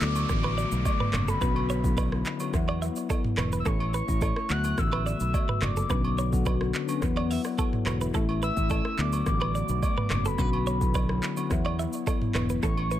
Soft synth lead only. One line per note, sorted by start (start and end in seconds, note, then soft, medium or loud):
0.02 0.30 D6 loud
0.30 0.82 D6 loud
0.86 1.30 D6 loud
1.29 2.41 B5 medium
3.60 3.68 E6 medium
3.67 4.52 C#6 loud
4.51 4.80 F#6 loud
4.79 5.64 E6 loud
5.63 6.47 D6 loud
8.44 9.01 E6 loud
9.00 9.27 D6 loud
9.28 9.79 D6 loud
9.84 10.28 D6 loud
10.26 11.38 B5 medium
12.64 13.00 C#6 loud